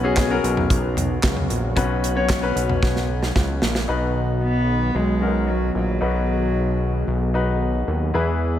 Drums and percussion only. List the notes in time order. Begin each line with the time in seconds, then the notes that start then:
0.17 kick, snare, clap, closed hi-hat
0.44 closed hi-hat
0.57 floor tom
0.70 kick, closed hi-hat
0.97 closed hi-hat, floor tom
1.23 kick, snare, clap, closed hi-hat
1.37 floor tom
1.50 closed hi-hat
1.77 kick, closed hi-hat
2.04 closed hi-hat
2.30 kick, snare, clap, closed hi-hat
2.57 closed hi-hat
2.69 floor tom
2.83 kick, snare
2.96 snare
3.23 snare
3.36 kick, snare
3.62 snare
3.75 snare